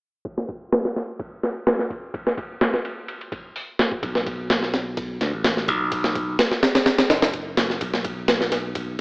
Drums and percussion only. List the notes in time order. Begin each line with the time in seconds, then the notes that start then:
0.25 kick, ride
0.38 snare
0.49 kick, ride
0.72 snare, ride
0.85 snare
0.96 snare, ride
1.20 kick, ride
1.43 snare, ride
1.67 snare, ride
1.79 snare
1.90 kick, ride
2.14 kick, ride
2.27 snare
2.38 kick, ride
2.61 snare, ride
2.74 snare
2.85 ride
3.08 ride
3.21 ride
3.32 kick, ride
3.56 open hi-hat
3.79 snare, ride
3.92 kick
4.03 kick, ride
4.15 snare
4.26 kick, ride
4.50 snare, ride
4.63 snare
4.74 snare, ride
4.97 kick, ride
5.21 snare, ride
5.44 snare, ride
5.57 snare
5.68 kick, ride
5.92 kick, ride
6.04 snare
6.15 kick, ride
6.39 snare, ride
6.51 snare
6.63 snare, ride
6.75 snare, ride
6.86 snare, ride
6.98 snare, ride
7.10 snare, ride
7.22 snare, ride
7.33 kick, ride
7.57 snare, ride
7.70 snare
7.81 kick, ride
7.94 snare
8.04 kick, ride
8.28 snare, ride
8.41 snare
8.52 snare, ride
8.75 kick, ride